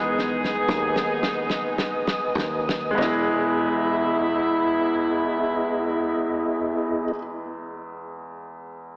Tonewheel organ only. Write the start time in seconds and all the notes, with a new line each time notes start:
Already playing: B4 D#5 G#5 D#6
2.98 B3 E4 G#4 D#5